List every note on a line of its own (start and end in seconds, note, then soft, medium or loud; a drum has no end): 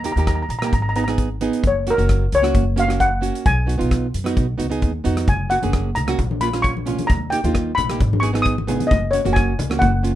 0.00 0.10 D#2 medium
0.00 0.11 A#3 medium
0.04 0.12 D#4 medium
0.04 0.12 G4 medium
0.04 0.11 A#5 medium
0.04 closed hi-hat medium
0.12 0.44 D#2 medium
0.12 0.18 A#5 medium
0.17 0.44 A#3 medium
0.17 0.44 D#4 medium
0.17 0.44 G4 medium
0.17 0.26 A#5 medium
0.17 closed hi-hat soft
0.27 0.34 A#5 medium
0.27 kick medium
0.27 cross-stick medium
0.27 closed hi-hat medium
0.35 0.41 A#5 medium
0.42 0.49 A#5 medium
0.49 0.68 A#1 medium
0.49 0.57 A#5 soft
0.49 closed hi-hat medium
0.59 0.73 A#3 medium
0.59 0.65 A#5 medium
0.59 cross-stick medium
0.59 closed hi-hat medium
0.63 0.73 D#4 medium
0.63 0.74 G4 medium
0.63 0.72 A#5 medium
0.73 1.47 G#1 medium
0.73 0.80 A#5 medium
0.73 kick medium
0.73 closed hi-hat soft
0.82 0.88 A#5 medium
0.89 0.95 A#5 medium
0.96 1.03 B3 medium
0.96 1.03 D#4 medium
0.96 1.04 G#4 medium
0.96 1.03 A#5 medium
0.96 closed hi-hat medium
1.04 1.28 B3 medium
1.04 1.10 A#5 medium
1.04 cross-stick medium
1.04 closed hi-hat soft
1.09 1.28 D#4 medium
1.09 1.29 G#4 medium
1.18 kick medium
1.18 closed hi-hat soft
1.41 1.64 B3 medium
1.41 1.64 D#4 medium
1.41 1.64 G#4 medium
1.41 closed hi-hat medium
1.53 closed hi-hat soft
1.63 1.92 F#1 medium
1.63 kick medium
1.63 closed hi-hat medium
1.67 1.89 C#5 medium
1.87 1.94 A#3 medium
1.87 1.94 C#4 medium
1.87 1.94 F#4 medium
1.87 2.35 A#4 medium
1.87 closed hi-hat medium
1.96 2.26 F#1 medium
1.96 2.24 A#3 medium
1.96 2.25 C#4 medium
1.96 2.25 F#4 medium
1.96 closed hi-hat medium
2.09 kick medium
2.09 cross-stick medium
2.09 closed hi-hat medium
2.32 2.51 C#2 medium
2.32 2.80 C#5 medium
2.32 closed hi-hat medium
2.42 2.63 A#3 medium
2.42 2.64 C#4 medium
2.42 2.64 F#4 medium
2.42 cross-stick medium
2.42 closed hi-hat medium
2.54 3.29 F#1 medium
2.54 kick medium
2.54 closed hi-hat medium
2.76 2.84 A#3 medium
2.76 2.84 C#4 medium
2.76 2.85 F#4 medium
2.76 3.02 F5 medium
2.76 closed hi-hat medium
2.88 3.09 A#3 medium
2.88 3.09 C#4 medium
2.88 3.09 F#4 medium
2.88 cross-stick medium
2.88 closed hi-hat medium
3.00 3.42 F#5 medium
3.00 kick medium
3.00 closed hi-hat medium
3.21 3.45 A#3 medium
3.21 3.45 C#4 medium
3.21 3.45 F#4 medium
3.21 closed hi-hat medium
3.35 closed hi-hat medium
3.46 3.74 B1 medium
3.46 4.78 G#5 medium
3.46 kick medium
3.46 closed hi-hat medium
3.66 3.74 B3 medium
3.66 3.75 D#4 medium
3.66 3.75 F#4 medium
3.66 closed hi-hat medium
3.78 4.08 B1 medium
3.78 4.06 B3 medium
3.78 4.07 D#4 medium
3.78 4.07 F4 medium
3.78 closed hi-hat soft
3.91 kick medium
3.91 cross-stick medium
3.91 closed hi-hat medium
4.14 4.33 F#2 medium
4.14 closed hi-hat medium
4.24 4.45 B3 medium
4.24 4.46 D#4 medium
4.24 4.46 F#4 medium
4.24 cross-stick medium
4.24 closed hi-hat medium
4.36 4.55 B1 medium
4.36 kick medium
4.36 closed hi-hat soft
4.58 4.80 C#2 medium
4.58 4.66 B3 medium
4.58 4.66 D#4 medium
4.58 4.66 F#4 medium
4.58 closed hi-hat medium
4.70 4.91 B3 medium
4.70 4.91 D#4 medium
4.70 4.92 G#4 medium
4.70 closed hi-hat soft
4.82 5.03 D#2 medium
4.82 kick medium
4.82 closed hi-hat medium
5.04 5.26 F2 medium
5.04 5.27 B3 medium
5.04 5.27 D#4 medium
5.04 5.28 F#4 medium
5.04 closed hi-hat medium
5.17 cross-stick medium
5.17 closed hi-hat medium
5.27 5.56 F#1 medium
5.27 5.49 G#5 medium
5.27 kick medium
5.27 closed hi-hat soft
5.27 low conga medium
5.49 5.57 A#3 medium
5.49 5.57 C#4 medium
5.49 5.58 F#4 medium
5.49 5.97 F#5 medium
5.49 closed hi-hat medium
5.62 5.90 F#1 medium
5.62 5.90 A#3 medium
5.62 5.90 C#4 medium
5.62 5.90 G#4 medium
5.62 closed hi-hat medium
5.62 high conga medium
5.73 kick medium
5.73 cross-stick medium
5.73 closed hi-hat medium
5.95 6.15 C#2 medium
5.95 6.42 A#5 medium
5.95 closed hi-hat medium
5.95 low conga medium
6.07 6.18 A#3 medium
6.07 6.18 C#4 medium
6.07 6.19 F#4 medium
6.07 cross-stick medium
6.07 closed hi-hat medium
6.19 6.94 A#1 medium
6.19 kick medium
6.19 closed hi-hat medium
6.19 low conga medium
6.31 high conga medium
6.41 6.48 A#3 medium
6.41 6.49 C#4 medium
6.41 6.49 F4 medium
6.41 6.51 B5 medium
6.41 closed hi-hat medium
6.53 6.73 A#3 medium
6.53 6.74 C#4 medium
6.53 6.74 F4 medium
6.53 cross-stick medium
6.53 closed hi-hat soft
6.62 7.10 C#6 medium
6.62 kick medium
6.62 closed hi-hat medium
6.77 high conga medium
6.86 7.09 A#3 medium
6.86 7.09 C#4 medium
6.86 7.10 F4 medium
6.86 closed hi-hat medium
6.86 low conga medium
6.99 closed hi-hat medium
6.99 high conga medium
7.07 7.38 D#2 medium
7.07 7.29 A#5 medium
7.07 kick medium
7.07 closed hi-hat medium
7.07 low conga medium
7.30 7.39 A#3 medium
7.30 7.40 D#4 medium
7.30 7.40 G4 medium
7.30 7.78 G5 medium
7.30 closed hi-hat medium
7.44 7.71 D#2 medium
7.44 7.71 A#3 medium
7.44 7.71 D#4 medium
7.44 7.72 F4 medium
7.44 closed hi-hat medium
7.44 high conga medium
7.55 kick medium
7.55 cross-stick medium
7.55 closed hi-hat medium
7.75 7.96 A#1 medium
7.75 8.23 B5 medium
7.75 closed hi-hat medium
7.75 low conga medium
7.89 8.00 A#3 medium
7.89 8.01 D#4 medium
7.89 8.01 G4 medium
7.89 cross-stick medium
7.89 closed hi-hat medium
8.00 8.75 G#1 medium
8.00 kick medium
8.00 closed hi-hat medium
8.00 low conga medium
8.13 high conga medium
8.20 8.30 B3 medium
8.20 8.30 D#4 medium
8.20 8.30 G#4 medium
8.20 8.31 C#6 medium
8.20 closed hi-hat medium
8.33 8.54 B3 medium
8.33 8.55 D#4 medium
8.33 8.55 G#4 medium
8.33 cross-stick medium
8.33 closed hi-hat medium
8.42 8.86 D#6 loud
8.42 kick medium
8.42 closed hi-hat medium
8.58 high conga medium
8.67 8.91 B3 medium
8.67 8.91 D#4 medium
8.67 8.91 G#4 medium
8.67 closed hi-hat medium
8.67 low conga medium
8.80 closed hi-hat medium
8.80 high conga medium
8.87 9.13 D#5 medium
8.91 9.20 F#1 medium
8.91 kick medium
8.91 closed hi-hat medium
8.91 low conga medium
9.11 9.21 A#3 medium
9.11 9.21 C#4 medium
9.11 9.21 F#4 medium
9.11 9.33 C#5 medium
9.11 closed hi-hat medium
9.25 9.53 F#1 medium
9.25 9.52 A#3 medium
9.25 9.53 C#4 medium
9.25 9.53 F#4 medium
9.25 closed hi-hat soft
9.25 high conga medium
9.33 9.82 G#5 medium
9.33 kick medium
9.33 cross-stick medium
9.33 closed hi-hat medium
9.59 9.78 C#2 medium
9.59 closed hi-hat medium
9.59 low conga medium
9.70 9.91 A#3 medium
9.70 9.91 C#4 medium
9.70 9.92 F#4 medium
9.70 cross-stick medium
9.70 closed hi-hat medium
9.79 10.15 F#1 medium
9.79 10.15 F#5 medium
9.79 kick medium
9.79 closed hi-hat soft
9.79 low conga medium
10.03 10.11 A#3 medium
10.03 10.11 C#4 medium
10.03 10.12 F4 medium
10.03 closed hi-hat medium